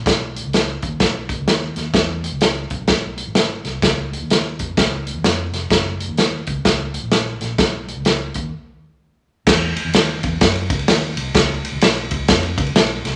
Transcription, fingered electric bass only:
X:1
M:4/4
L:1/16
Q:"Swing" 1/4=128
K:E
V:1 name="Fingered electric bass" clef=bass
B,,,3 C,,3 D,,2 B,,,3 C,, D,,2 D,,2 | E,,3 C,,3 B,,,2 B,,,3 G,,,3 =C,,2 | C,,3 D,,3 ^E,,2 C,,3 D,, E,,2 ^E,,,2 | F,,,3 D,,3 C,,2 C,,3 ^A,,,3 A,,,2 |
B,,,3 C,,3 D,,2 z8 | E,,2 z E,, D,,2 E,,2 F,,2 C,,2 D,,2 =C,,2 | C,,2 z C,, B,,,2 C,,2 ^E,,2 C,,2 B,,,2 =C,,2 |]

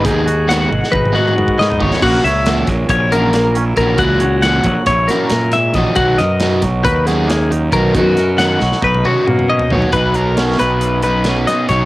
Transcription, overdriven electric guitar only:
X:1
M:9/8
L:1/8
Q:3/8=91
K:B
V:1 name="Overdriven electric guitar"
[D,G,B,D] z [D,G,B,D] z2 [D,G,B,D] z2 [D,G,B,D] | [E,A,CF] z [E,A,CF] z2 [E,A,CF] z2 [E,A,CF] | [E,A,CF] z [E,A,CF] z2 [E,A,CF] z2 [E,A,CF] | [D,F,B,F] z [D,F,B,F] z2 [D,F,B,F] z2 [D,F,B,F] |
[D,F,B,F] z [D,F,B,F] z2 [D,F,B,F] z2 [D,F,B,F] | [B,,F,B,D] [F,B,D] [B,,F,B,D]3 [F,B,D] [B,,F,B,D] [F,B,D] [B,,F,B,D] |]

